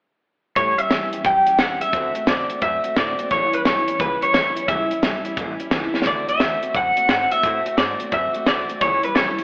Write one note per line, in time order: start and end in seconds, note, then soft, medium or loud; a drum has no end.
0.56 0.78 A2 medium
0.56 0.79 E3 medium
0.56 0.78 G3 medium
0.56 0.77 C#4 medium
0.56 0.76 G4 medium
0.56 0.78 C#5 loud
0.56 kick loud
0.56 closed hi-hat medium
0.77 0.90 G3 soft
0.77 0.90 C#4 soft
0.77 0.90 G4 medium
0.77 1.25 E5 loud
0.77 muted upright bass stroke medium
0.77 closed hi-hat medium
0.90 1.11 G2 medium
0.90 1.12 A2 medium
0.90 1.13 E3 medium
0.90 1.13 G3 medium
0.90 1.12 C#4 medium
0.90 1.11 G4 medium
0.90 snare loud
0.90 closed hi-hat medium
1.12 1.23 G3 soft
1.12 1.24 C#4 medium
1.12 1.25 G4 medium
1.12 muted upright bass stroke soft
1.12 closed hi-hat medium
1.24 1.46 F#2 medium
1.24 1.46 E3 medium
1.24 1.47 G3 medium
1.24 1.46 C#4 medium
1.24 1.45 G4 medium
1.24 1.59 G5 loud
1.24 kick loud
1.24 closed hi-hat medium
1.46 1.57 G3 soft
1.46 1.58 C#4 soft
1.46 1.58 G4 medium
1.46 muted upright bass stroke medium
1.46 closed hi-hat medium
1.58 1.81 E2 medium
1.58 1.81 A2 medium
1.58 1.81 E3 medium
1.58 1.81 G3 medium
1.58 1.80 C#4 medium
1.58 1.79 G4 medium
1.58 1.81 F#5 loud
1.58 snare loud
1.58 closed hi-hat medium
1.80 1.92 G3 soft
1.80 1.92 C#4 medium
1.80 1.92 G4 medium
1.80 2.25 E5 loud
1.80 muted upright bass stroke medium
1.80 closed hi-hat medium
1.91 2.15 D2 medium
1.91 2.15 D3 medium
1.91 2.15 A3 medium
1.91 2.14 C4 medium
1.91 2.12 F#4 medium
1.91 kick loud
1.91 closed hi-hat medium
2.14 2.26 A3 soft
2.14 2.26 C4 soft
2.14 2.27 F#4 medium
2.14 muted upright bass stroke medium
2.14 closed hi-hat medium
2.26 2.49 F2 medium
2.26 2.49 D3 medium
2.26 2.50 A3 medium
2.26 2.49 C4 medium
2.26 2.48 F#4 medium
2.26 2.60 D5 medium
2.26 snare loud
2.26 closed hi-hat medium
2.49 2.62 A3 soft
2.49 2.62 C4 soft
2.49 2.62 F#4 medium
2.49 muted upright bass stroke medium
2.49 closed hi-hat medium
2.62 2.84 F#2 medium
2.62 2.84 D3 medium
2.62 2.85 A3 medium
2.62 2.85 C4 medium
2.62 2.83 F#4 medium
2.62 2.98 E5 loud
2.62 kick loud
2.62 closed hi-hat medium
2.84 2.97 A3 soft
2.84 2.97 C4 soft
2.84 2.97 F#4 medium
2.84 muted upright bass stroke medium
2.84 closed hi-hat medium
2.96 3.18 A2 medium
2.96 3.19 D3 medium
2.96 3.19 A3 medium
2.96 3.19 C4 medium
2.96 3.18 F#4 medium
2.96 3.29 D5 medium
2.96 kick medium
2.96 snare loud
2.96 closed hi-hat medium
3.19 3.32 A3 soft
3.19 3.32 C4 medium
3.19 3.31 F#4 medium
3.19 muted upright bass stroke medium
3.19 closed hi-hat medium
3.31 3.53 A1 medium
3.31 3.53 A2 medium
3.31 3.54 E3 medium
3.31 3.54 G3 medium
3.31 3.53 C#4 medium
3.31 3.52 E4 medium
3.31 3.54 C#5 loud
3.31 kick loud
3.31 closed hi-hat medium
3.53 3.65 G3 soft
3.53 3.65 C#4 medium
3.53 3.65 E4 medium
3.53 3.59 B4 medium
3.53 muted upright bass stroke medium
3.53 closed hi-hat medium
3.65 3.87 B1 medium
3.65 3.87 A2 medium
3.65 3.88 E3 medium
3.65 3.88 G3 medium
3.65 3.87 C#4 medium
3.65 3.86 E4 medium
3.65 3.98 C#5 medium
3.65 snare loud
3.65 closed hi-hat medium
3.87 3.98 G3 medium
3.87 3.99 C#4 soft
3.87 3.99 E4 medium
3.87 muted upright bass stroke medium
3.87 closed hi-hat medium
3.98 4.21 C#2 medium
3.98 4.21 E3 medium
3.98 4.22 G3 medium
3.98 4.21 C#4 medium
3.98 4.20 E4 medium
3.98 4.23 B4 medium
3.98 kick loud
3.98 closed hi-hat medium
4.21 4.33 G3 soft
4.21 4.33 C#4 medium
4.21 4.34 E4 medium
4.21 4.33 C#5 medium
4.21 muted upright bass stroke medium
4.21 closed hi-hat medium
4.33 4.55 D2 medium
4.33 4.56 A2 medium
4.33 4.56 E3 medium
4.33 4.56 G3 medium
4.33 4.56 C#4 medium
4.33 4.55 E4 medium
4.33 4.68 C#5 medium
4.33 snare loud
4.33 closed hi-hat medium
4.56 4.67 G3 soft
4.56 4.67 C#4 soft
4.56 4.68 E4 soft
4.56 closed hi-hat medium
4.68 4.90 C#2 medium
4.68 4.90 A2 medium
4.68 4.91 E3 medium
4.68 4.91 G3 medium
4.68 4.91 C#4 medium
4.68 4.89 E4 medium
4.68 5.67 E5 medium
4.68 kick loud
4.68 closed hi-hat medium
4.90 5.02 G3 soft
4.90 5.03 C#4 soft
4.90 5.03 E4 medium
4.90 muted upright bass stroke medium
4.90 closed hi-hat medium
5.02 5.24 B1 medium
5.02 5.25 A2 medium
5.02 5.25 E3 medium
5.02 5.25 G3 medium
5.02 5.24 C#4 medium
5.02 5.23 E4 medium
5.02 snare loud
5.02 closed hi-hat medium
5.24 5.36 G3 medium
5.24 5.37 C#4 medium
5.24 5.37 E4 medium
5.24 muted upright bass stroke medium
5.24 closed hi-hat medium
5.36 5.59 A1 medium
5.36 5.59 E3 medium
5.36 5.59 G3 medium
5.36 5.58 C#4 medium
5.36 5.57 E4 medium
5.36 kick loud
5.36 closed hi-hat medium
5.58 5.71 G3 medium
5.58 5.72 C#4 medium
5.58 5.71 E4 medium
5.58 muted upright bass stroke medium
5.58 closed hi-hat medium
5.71 5.93 C#2 medium
5.71 5.94 A2 medium
5.71 5.94 E3 medium
5.71 5.94 G3 medium
5.71 5.93 C#4 loud
5.71 5.92 E4 loud
5.71 kick medium
5.71 snare loud
5.71 closed hi-hat medium
5.93 6.06 G3 soft
5.93 6.06 C#4 medium
5.93 6.06 E4 medium
5.93 muted upright bass stroke medium
5.93 snare medium
6.02 snare medium
6.06 6.27 D2 medium
6.06 6.28 D3 medium
6.06 6.29 A3 medium
6.06 6.28 C4 medium
6.06 6.27 F#4 medium
6.06 6.27 D5 loud
6.06 kick loud
6.06 closed hi-hat medium
6.28 6.39 A3 soft
6.28 6.40 C4 soft
6.28 6.40 F#4 medium
6.28 6.76 E5 loud
6.28 muted upright bass stroke medium
6.28 closed hi-hat medium
6.40 6.62 E2 medium
6.40 6.62 D3 medium
6.40 6.63 A3 medium
6.40 6.62 C4 medium
6.40 6.61 F#4 medium
6.40 snare loud
6.40 closed hi-hat medium
6.62 6.73 A3 soft
6.62 6.74 C4 medium
6.62 6.74 F#4 medium
6.62 muted upright bass stroke medium
6.62 closed hi-hat medium
6.73 6.96 F#2 medium
6.73 6.96 D3 medium
6.73 6.97 A3 medium
6.73 6.96 C4 medium
6.73 6.94 F#4 medium
6.73 7.09 F#5 loud
6.73 kick loud
6.73 closed hi-hat medium
6.95 7.07 A3 soft
6.95 7.08 C4 soft
6.95 7.08 F#4 medium
6.95 closed hi-hat medium
7.08 7.31 G#2 medium
7.08 7.31 D3 medium
7.08 7.31 A3 medium
7.08 7.31 C4 medium
7.08 7.29 F#4 medium
7.08 7.32 F#5 loud
7.08 snare loud
7.08 closed hi-hat medium
7.31 7.42 A3 soft
7.31 7.43 C4 soft
7.31 7.43 F#4 medium
7.31 7.77 E5 loud
7.31 muted upright bass stroke medium
7.31 closed hi-hat medium
7.43 7.65 A2 medium
7.43 7.66 D3 medium
7.43 7.66 A3 medium
7.43 7.65 C4 medium
7.43 7.64 F#4 medium
7.43 kick loud
7.43 closed hi-hat medium
7.65 7.76 A3 soft
7.65 7.77 C4 soft
7.65 7.77 F#4 medium
7.65 muted upright bass stroke medium
7.65 closed hi-hat medium
7.77 8.00 G#2 medium
7.77 8.00 D3 medium
7.77 8.00 A3 medium
7.77 7.98 C4 medium
7.77 7.97 F#4 medium
7.77 8.13 D5 medium
7.77 snare loud
7.77 closed hi-hat medium
7.98 8.10 A3 soft
7.98 8.11 C4 soft
7.98 8.12 F#4 medium
7.98 closed hi-hat medium
8.11 8.34 F#2 medium
8.11 8.34 D3 medium
8.11 8.35 A3 medium
8.11 8.34 C4 medium
8.11 8.32 F#4 medium
8.11 8.47 E5 loud
8.11 kick loud
8.11 closed hi-hat medium
8.33 8.45 A3 soft
8.33 8.46 C4 medium
8.33 8.46 F#4 medium
8.33 muted upright bass stroke medium
8.33 closed hi-hat medium
8.46 8.68 D2 loud
8.46 8.69 D3 medium
8.46 8.69 A3 medium
8.46 8.68 C4 medium
8.46 8.67 F#4 medium
8.46 8.81 D5 loud
8.46 kick medium
8.46 snare loud
8.46 closed hi-hat medium
8.68 8.81 A3 soft
8.68 8.81 C4 medium
8.68 8.81 F#4 medium
8.68 muted upright bass stroke medium
8.68 closed hi-hat medium
8.80 9.03 C#2 medium
8.80 9.03 A2 medium
8.80 9.04 E3 medium
8.80 9.04 G3 medium
8.80 9.03 C#4 medium
8.80 9.02 E4 medium
8.80 9.04 C#5 loud
8.80 kick loud
8.80 closed hi-hat medium
9.03 9.15 G3 soft
9.03 9.16 C#4 soft
9.03 9.16 E4 soft
9.03 9.15 B4 medium
9.03 muted upright bass stroke medium
9.03 closed hi-hat medium
9.15 9.38 B1 loud
9.15 9.38 A2 medium
9.15 9.38 E3 medium
9.15 9.38 G3 medium
9.15 9.37 C#4 medium
9.15 9.35 E4 medium
9.15 9.44 C#5 medium
9.15 snare loud
9.15 closed hi-hat medium
9.37 9.44 G3 soft
9.37 9.44 C#4 medium
9.37 9.44 E4 medium
9.37 muted upright bass stroke medium
9.37 closed hi-hat medium